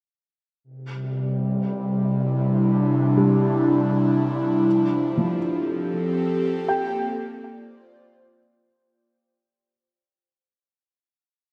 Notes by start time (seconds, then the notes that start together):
0.64 C3
0.92 G3
2.07 E4
2.46 D4
3.17 G3
4.64 F3
5.17 F3
5.57 C4 G4 A4
6.68 A#3 G4 G5
7.46 F4 D5
7.59 C5